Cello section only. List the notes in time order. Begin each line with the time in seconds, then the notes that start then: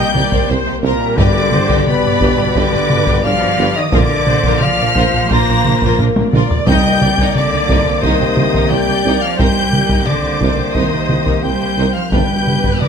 Already playing: G3
0.84 A#2
1.18 D3
1.87 B2
2.56 D3
3.24 F3
3.75 D#3
3.92 D3
4.61 F3
5.30 A#3
6.68 G3
7.36 D3
8.04 D#3
8.71 G3
9.22 F3
9.39 G3
10.07 D3
10.75 D#3
11.44 G3
11.96 F3
12.12 G3
12.82 D3